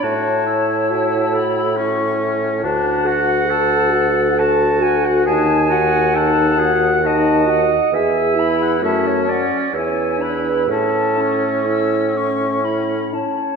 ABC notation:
X:1
M:3/4
L:1/16
Q:1/4=68
K:A
V:1 name="Flute"
a4 a2 b2 c'4 | a2 f2 a2 f2 a2 f2 | a2 f2 a2 f2 a2 f2 | g2 b2 a2 f2 g2 b2 |
a2 c'2 e'2 c'2 b2 a2 |]
V:2 name="Clarinet"
c6 A2 z4 | f8 a2 g f | g4 f4 ^d4 | e3 f e c d2 c2 B2 |
A8 z2 c2 |]
V:3 name="Oboe"
F2 E6 C4 | D2 F2 A4 F4 | G2 F2 A2 G2 F2 z2 | E4 C4 E4 |
C8- C2 z2 |]
V:4 name="French horn"
E4 F4 E4 | A2 F2 A2 F2 A2 F2 | ^D2 F2 D2 F2 D2 F2 | G2 E2 A,2 C2 E2 D2 |
E2 C2 E2 C2 E2 C2 |]
V:5 name="Bassoon" clef=bass
A,,12 | D,,12 | ^D,,12 | E,,4 F,,2 z2 E,,4 |
A,,8- A,,2 z2 |]